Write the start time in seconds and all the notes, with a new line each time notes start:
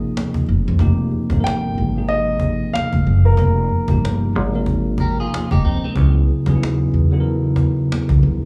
Already playing: C3 F3 A#3 D#4 F4 G#4 A#4 D#5
0.01 cajon slap
0.17 cajon slap
0.34 cajon bass
0.47 F1, cajon slap
0.67 F2, cajon slap
0.79 F1 C3 F3 A#3 D#4 G4, cajon bass
0.98 cajon slap
1.11 cajon slap
1.30 G1 C3 F3 A#3 D#4, cajon bass
1.34 A4
1.40 A#4 G5
1.47 cajon slap
1.62 cajon slap
1.75 G#1, cajon slap
1.95 C3 F3 A#3 D#4 G#4, cajon slap
2.08 D#5, cajon slap
2.27 cajon slap
2.40 cajon bass
2.60 cajon slap
2.73 F5, cajon slap
2.93 F1, cajon bass
3.05 F#1, cajon slap
3.25 A#4
3.37 F1 C3 F3 A#3 D#4 A#4, cajon bass
3.57 cajon slap
3.69 cajon slap
3.88 G1 C3 F3 A#3 D#4 G4, cajon bass
4.05 cajon slap
4.20 cajon slap
4.33 G#1, cajon slap
4.53 C3 F3 A#3 D#4 A#4, cajon slap
4.66 cajon bass
4.86 cajon slap
4.98 G4 A#4, cajon bass
5.18 F4 G#4, cajon slap
5.22 cajon slap
5.34 cajon slap
5.51 F1 D#4 G4, cajon bass
5.65 D2 C4 D#4
5.84 G#3 C4, cajon slap
5.86 cajon slap
5.95 C#2 C#3 F#3 B3 E4 G#4, cajon bass
6.15 cajon slap
6.28 cajon slap
6.46 D#2 C#3 F#3 B3 D#4 G#4, cajon bass
6.55 E4
6.63 cajon slap
6.79 cajon slap
6.92 E2, cajon slap
7.11 C#3 F#3 B3 E4 A4, cajon slap
7.20 A#4, cajon slap
7.44 cajon slap
7.56 cajon bass
7.76 cajon slap
7.92 cajon slap
8.09 C#2, cajon bass
8.22 D2, cajon slap
8.42 cajon slap